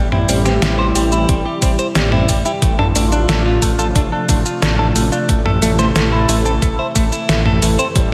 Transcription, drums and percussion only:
0.12 mid tom medium
0.29 open hi-hat medium
0.29 shaker medium
0.46 snare soft
0.46 shaker soft
0.62 snare loud
0.62 closed hi-hat medium
0.62 shaker soft
0.95 open hi-hat medium
0.95 shaker medium
1.12 shaker soft
1.29 kick loud
1.29 closed hi-hat medium
1.29 shaker soft
1.62 kick loud
1.62 open hi-hat medium
1.62 shaker medium
1.79 shaker soft
1.95 snare loud
1.95 closed hi-hat loud
1.95 shaker soft
2.12 mid tom medium
2.29 kick medium
2.29 open hi-hat medium
2.29 shaker medium
2.45 shaker soft
2.62 kick loud
2.62 closed hi-hat medium
2.62 shaker soft
2.79 mid tom medium
2.96 open hi-hat medium
2.96 shaker medium
3.12 shaker soft
3.29 snare loud
3.29 closed hi-hat medium
3.29 shaker soft
3.62 kick medium
3.62 open hi-hat medium
3.62 shaker medium
3.79 shaker soft
3.96 kick loud
3.96 closed hi-hat medium
3.96 shaker soft
4.29 kick loud
4.29 open hi-hat medium
4.29 shaker medium
4.46 shaker soft
4.62 snare loud
4.62 closed hi-hat medium
4.62 shaker soft
4.96 open hi-hat medium
4.96 shaker medium
5.12 shaker soft
5.29 kick loud
5.29 closed hi-hat medium
5.29 shaker soft
5.46 mid tom medium
5.62 open hi-hat medium
5.62 shaker medium
5.79 snare soft
5.79 shaker soft
5.96 snare loud
5.96 closed hi-hat medium
5.96 shaker soft
6.29 open hi-hat medium
6.29 shaker medium
6.46 shaker soft
6.62 kick loud
6.62 closed hi-hat medium
6.62 shaker soft
6.96 kick loud
6.96 open hi-hat medium
6.96 shaker medium
7.12 shaker soft
7.29 snare loud
7.29 closed hi-hat medium
7.29 shaker soft
7.46 mid tom medium
7.62 open hi-hat medium
7.62 shaker medium
7.79 shaker soft
7.96 kick loud
7.96 closed hi-hat medium
7.96 shaker soft

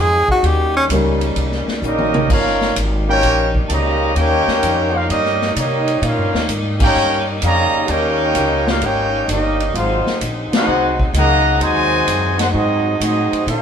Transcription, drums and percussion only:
0.28 kick medium
0.44 ride medium
0.90 hi-hat pedal medium
0.90 ride medium
1.21 ride medium
1.36 ride medium
1.52 snare soft
1.68 snare medium
1.83 hi-hat pedal medium
1.98 high tom medium
2.14 mid tom loud
2.30 kick medium
2.30 crash medium
2.46 snare soft
2.61 snare medium
2.76 hi-hat pedal medium
2.76 ride medium
3.23 ride medium
3.55 kick medium
3.70 hi-hat pedal medium
3.70 ride medium
4.16 ride medium
4.48 snare medium
4.63 hi-hat pedal medium
4.63 ride medium
5.10 ride medium
5.25 snare soft
5.41 snare medium
5.56 hi-hat pedal medium
5.56 ride medium
5.88 ride medium
6.03 ride medium
6.34 snare medium
6.49 hi-hat pedal medium
6.49 ride medium
6.80 kick loud
6.80 crash loud
7.42 hi-hat pedal medium
7.42 ride medium
7.88 ride medium
8.35 hi-hat pedal medium
8.35 ride medium
8.67 snare medium
8.81 ride medium
9.29 hi-hat pedal medium
9.29 ride medium
9.60 ride medium
9.75 ride medium
10.07 snare medium
10.21 hi-hat pedal medium
10.21 ride medium
10.53 snare loud
10.53 ride medium
10.99 kick medium
11.14 hi-hat pedal medium
11.14 ride medium
11.61 ride medium
12.07 hi-hat pedal medium
12.07 ride medium
12.39 snare medium
12.39 ride medium
13.01 hi-hat pedal medium
13.01 ride medium
13.33 ride medium
13.48 ride medium

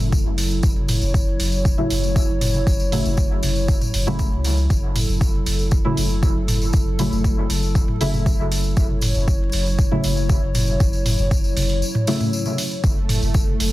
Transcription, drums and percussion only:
0.00 tambourine soft
0.12 kick loud
0.12 tambourine medium
0.38 open hi-hat medium
0.38 tambourine loud
0.51 tambourine soft
0.63 kick loud
0.63 tambourine medium
0.76 high tom soft
0.88 mid tom medium
0.88 open hi-hat medium
0.88 tambourine medium
1.02 tambourine soft
1.14 kick loud
1.14 tambourine soft
1.40 open hi-hat medium
1.40 tambourine medium
1.52 tambourine soft
1.65 kick loud
1.65 high tom soft
1.65 tambourine medium
1.78 mid tom medium
1.90 open hi-hat medium
1.90 tambourine loud
2.04 tambourine soft
2.16 kick loud
2.16 tambourine medium
2.41 mid tom medium
2.41 open hi-hat medium
2.41 tambourine medium
2.54 high tom soft
2.54 tambourine soft
2.67 kick loud
2.67 tambourine medium
2.80 tambourine soft
2.92 mid tom medium
2.92 open hi-hat medium
2.92 tambourine medium
3.05 tambourine soft
3.17 kick loud
3.17 tambourine medium
3.43 open hi-hat medium
3.43 high tom soft
3.43 tambourine medium
3.56 tambourine soft
3.68 kick loud
3.68 tambourine medium
3.81 mid tom medium
3.81 tambourine soft
3.94 open hi-hat medium
3.94 tambourine loud
4.07 mid tom medium
4.07 tambourine soft
4.19 kick loud
4.19 tambourine medium
4.32 high tom soft
4.44 open hi-hat medium
4.44 tambourine loud
4.57 tambourine soft
4.70 kick loud
4.70 tambourine soft
4.96 mid tom medium
4.96 open hi-hat medium
4.96 tambourine medium
5.09 tambourine soft
5.21 kick loud
5.21 tambourine medium
5.34 high tom soft
5.46 open hi-hat medium
5.46 tambourine medium
5.59 tambourine soft
5.71 kick loud
5.71 tambourine soft
5.85 mid tom medium
5.97 open hi-hat medium
5.97 tambourine medium
6.10 tambourine soft
6.23 kick loud
6.23 high tom soft
6.23 tambourine medium
6.48 mid tom medium
6.48 open hi-hat medium
6.48 tambourine medium
6.61 tambourine soft
6.73 kick loud
6.73 tambourine medium
6.99 mid tom medium
6.99 open hi-hat medium
6.99 tambourine medium
7.12 high tom soft
7.12 tambourine soft
7.24 kick loud
7.24 tambourine soft
7.50 open hi-hat medium
7.50 tambourine medium
7.63 tambourine soft
7.75 kick loud
7.75 tambourine medium
7.88 mid tom medium
8.01 open hi-hat medium
8.01 high tom soft
8.01 tambourine medium
8.13 mid tom medium
8.13 tambourine soft
8.26 kick loud
8.26 tambourine soft
8.52 open hi-hat medium
8.52 tambourine medium
8.64 tambourine soft
8.77 kick loud
8.77 tambourine soft
8.90 high tom soft
9.01 mid tom medium
9.01 open hi-hat medium
9.01 tambourine medium
9.15 tambourine soft
9.28 kick loud
9.28 tambourine soft
9.52 open hi-hat medium
9.52 tambourine medium
9.66 tambourine soft
9.78 kick loud
9.78 high tom soft
9.78 tambourine soft
9.91 mid tom medium
10.04 open hi-hat medium
10.04 tambourine medium
10.17 tambourine soft
10.29 kick loud
10.29 tambourine medium
10.55 mid tom medium
10.55 open hi-hat medium
10.55 tambourine medium
10.67 high tom soft
10.67 tambourine soft
10.80 kick loud
10.80 tambourine soft
10.93 tambourine soft
11.06 mid tom medium
11.06 open hi-hat medium
11.06 tambourine medium
11.19 tambourine soft
11.31 kick loud
11.31 tambourine soft
11.44 tambourine soft
11.57 open hi-hat medium
11.57 high tom soft
11.57 tambourine loud
11.69 open hi-hat soft
11.69 tambourine soft
11.82 tambourine soft
11.95 mid tom medium
12.07 open hi-hat medium
12.07 tambourine medium
12.20 mid tom medium
12.20 tambourine soft
12.33 tambourine medium
12.46 high tom soft
12.46 tambourine soft
12.58 open hi-hat medium
12.58 tambourine loud
12.71 tambourine soft
12.84 kick loud
12.84 tambourine soft
13.09 mid tom medium
13.09 open hi-hat medium
13.09 tambourine loud
13.22 tambourine soft
13.34 kick loud
13.34 tambourine medium
13.47 high tom soft
13.60 open hi-hat medium
13.60 tambourine loud

